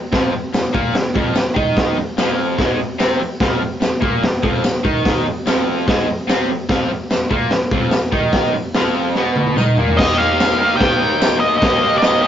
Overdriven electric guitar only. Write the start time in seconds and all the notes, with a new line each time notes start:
0.12 F2 F3
0.33 F2
0.53 F2
0.73 A#2 A#3
0.94 F2
1.15 F2 F3
1.35 F2
1.54 D#3 D#4
1.97 F2
2.17 F2 F3
2.58 G#2 G#3
2.79 F2
2.99 C3 C4
3.21 F2
3.41 F2 F3
3.61 F2
3.81 F2
4.01 A#2 A#3
4.22 F2
4.42 F2 F3
4.63 F2
4.84 D#3 D#4
5.26 F2
5.46 F2 F3
5.88 G#2 G#3
6.08 F2
6.28 C3 C4
6.49 F2
6.69 F2 F3
6.90 F2
7.11 F2
7.30 A#2 A#3
7.52 F2
7.72 F2 F3
7.93 F2
8.12 D#3 D#4
8.54 F2
8.75 F2 F3
9.16 B2 B3
9.57 D#3 D#4
9.78 A#2 A#3
9.98 D#3 A#3 D#4
10.03 G4
10.59 A#3 D#4 G4
10.63 D#3
11.61 D#3 A#3 D#4
11.66 G4
12.21 D#4 G4